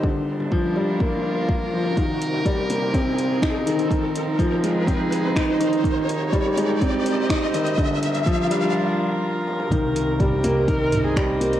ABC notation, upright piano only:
X:1
M:4/4
L:1/8
Q:1/4=124
K:Cm
V:1 name="Upright piano" clef=bass
D, z F, G, B, z B, F, | E, z G, B, C z E E, | E, z F, A, C z E E, | E, z G, A, C z E E, |
D, z F, G, z4 | E, z G, B, E, z G, B, |]